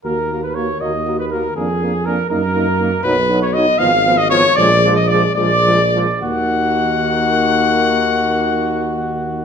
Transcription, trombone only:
\new Staff \with { instrumentName = "Trombone" } { \clef bass \time 6/8 \key ees \minor \tempo 4. = 76 bes8 bes8 bes8 bes8 bes8 bes8 | bes8 bes8 bes8 bes8 bes8 bes8 | fis8 fis8 fis8 f8 f8 f8 | f8 f8 f8 f8 f8 f8 |
ees2.~ | ees2. | }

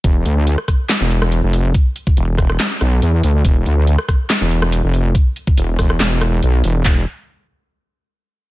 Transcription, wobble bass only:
\new Staff \with { instrumentName = "Wobble bass" } { \clef bass \time 4/4 \key c \major \tempo 4 = 141 e,,8 d,8. r4 e,,4 f,,8. | r4 e,,8 e,,8 r8 b,,8 e,8 d,8 | e,,8 d,8. r4 e,,4 f,,8. | r4 e,,8 e,,8 e,,4 b,,8 e,,8 |
e,,8 r2. r8 | }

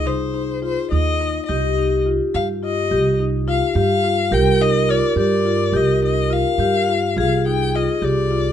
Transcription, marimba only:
\new Staff \with { instrumentName = "Marimba" } { \time 5/8 \key c \minor \tempo 4 = 106 ees'8 ees'8 f'8 ees'8 ees'8 | g'8 ees'8 f'8 g'8 f'8 | g'8 ees'8 f'8 g'8 f'8 | g'8 ees'8 f'8 g'8 f'8 |
g'8 ees'8 f'8 g'8 f'8 | f'8 ees'8 f'8 g'8 f'8 | }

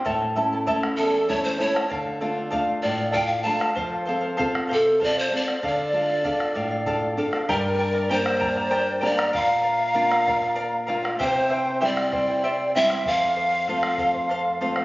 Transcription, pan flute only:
\new Staff \with { instrumentName = "Pan flute" } { \time 6/8 \key d \minor \tempo 4. = 65 r4. a'8 cis''16 c''16 cis''8 | r4. d''8 g''16 f''16 a''8 | r4. a'8 d''16 c''16 d''8 | d''2~ d''8 r8 |
bes'4 c''4. d''8 | f''2~ f''8 r8 | c''4 d''4. e''8 | f''2~ f''8 r8 | }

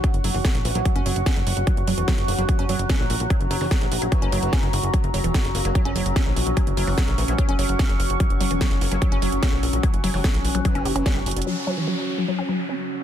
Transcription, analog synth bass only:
\new Staff \with { instrumentName = "Analog synth bass" } { \clef bass \time 4/4 \key fis \major \tempo 4 = 147 r16 fis,,16 fis,,16 fis,,16 r16 ais,,16 ais,,16 ais,,16 r16 fis,,16 fis,,16 fis,,16 r16 fis,,16 fis,,16 fis,,16 | r16 fis,,16 fis,,16 e,,16 r16 fis,,16 fis,,16 fis,,16 r16 fis,,16 fis,,16 fis,,16 r16 ais,,16 ais,,16 ais,,16 | r16 fis,,16 fis,,16 fis,,16 r16 ais,,16 ais,,16 ais,,16 r16 fis,,16 fis,,16 fis,,16 r16 fis,,16 fis,,16 fis,,16 | r16 fis,,16 fis,,16 e,,16 r16 fis,,16 fis,,16 fis,,16 r16 fis,,16 fis,,16 fis,,16 r16 ais,,16 ais,,16 ais,,16 |
r16 fis,,16 fis,,16 fis,,16 r16 ais,,16 ais,,16 ais,,16 r16 fis,,16 fis,,16 fis,,16 r16 fis,,16 fis,,16 fis,,16 | r16 fis,,16 fis,,16 e,,16 r16 fis,,16 fis,,16 fis,,16 r16 fis,,16 fis,,16 fis,,16 r16 ais,,16 ais,,16 ais,,16 | r16 fis,,16 fis,,16 fis,,16 r16 ais,,16 ais,,16 ais,,16 r16 fis,,16 fis,,16 fis,,16 r16 fis,,16 fis,,16 fis,,16 | r1 | }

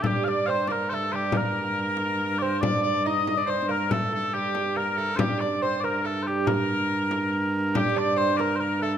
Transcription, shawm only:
\new Staff \with { instrumentName = "Shawm" } { \time 3/4 \key g \minor \tempo 4 = 140 g'8 d''8 c''8 bes'8 a'8 g'8 | bes'2. | d''8 d''8 ees''4 c''8 bes'8 | a'8 a'8 g'4 bes'8 a'8 |
g'8 d''8 c''8 bes'8 a'8 r8 | bes'2~ bes'8 r8 | g'8 d''8 c''8 bes'8 bes'8 a'8 | }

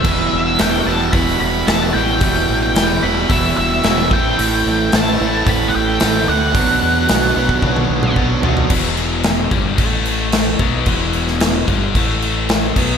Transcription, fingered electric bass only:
\new Staff \with { instrumentName = "Fingered electric bass" } { \clef bass \time 4/4 \key e \minor \tempo 4 = 111 e,,8 e,,8 e,,8 e,,8 e,,8 e,,8 e,,8 a,,8 | e,,8 a,,8 e,,8 e,,8 e,,8 e,,8 e,,8 a,,8 | a,,8 a,,8 a,,8 a,,8 a,,8 a,,8 a,,8 d,8 | b,,8 e,8 b,,8 b,,8 b,,8 b,,8 b,,4 |
e,,4. g,,8 a,,4. b,,8 | e,,4. g,,8 a,,4. b,,8 | }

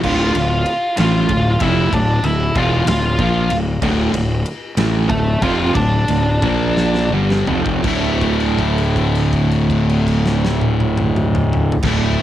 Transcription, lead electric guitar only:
\new Staff \with { instrumentName = "Lead electric guitar" } { \time 6/8 \key d \minor \tempo 4. = 60 <f' f''>4. <f' f''>4 <e' e''>8 | <d' d''>8 <e' e''>8 <f' f''>8 <f' f''>4 r8 | r2 <a a'>8 <f' f''>8 | <d' d''>2 r4 |
r2. | r2. | }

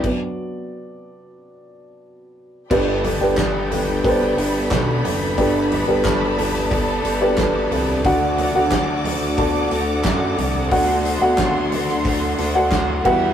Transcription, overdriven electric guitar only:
\new Staff \with { instrumentName = "Overdriven electric guitar" } { \time 4/4 \key g \major \tempo 4 = 90 r1 | <g b d' a'>8 <b d' a'>8 <g b d' a'>8 <b d' a'>8 <g b d' a'>8 <b d' a'>8 <g b d' a'>8 <b d' a'>8 | <g b d' a'>8 <b d' a'>8 <g b d' a'>8 <b d' a'>8 <g b d' a'>8 <b d' a'>8 <g b d' a'>8 <b d' a'>8 | <d fis a d' fis'>8 <a d' fis'>8 <fis a d' fis'>8 <a d' fis'>8 <d fis a d' fis'>8 <a d' fis'>8 <fis a d' fis'>8 <a d' fis'>8 |
<d fis a d' fis'>8 <a d' fis'>8 <fis a d' fis'>8 <a d' fis'>8 <d fis a d' fis'>8 <a d' fis'>8 <fis a d' fis'>8 <e g e' fis'>8 | }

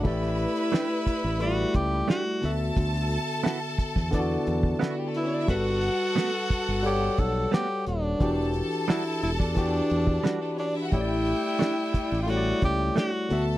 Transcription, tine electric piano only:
\new Staff \with { instrumentName = "Tine electric piano" } { \time 4/4 \key a \mixolydian \tempo 4 = 88 <a e' g' d''>4.~ <a e' g' d''>16 r16 <g a e' d''>4. <d b fis' e''>8~ | <d b fis' e''>4~ <d b fis' e''>16 r8. <d b e' fis' d''>4.~ <d b e' fis' d''>16 r16 | <g fis' a' b'>4.~ <g fis' a' b'>16 r16 <g a' cis'' fis''>4.~ <g a' cis'' fis''>16 r16 | <e d' fis' g'>4.~ <e d' fis' g'>16 r16 <e d' fis' g'>4.~ <e d' fis' g'>16 r16 |
<a e' g' cis'' d''>4.~ <a e' g' cis'' d''>16 r16 <g a e' cis'' d''>4. <d b fis' e''>8 | }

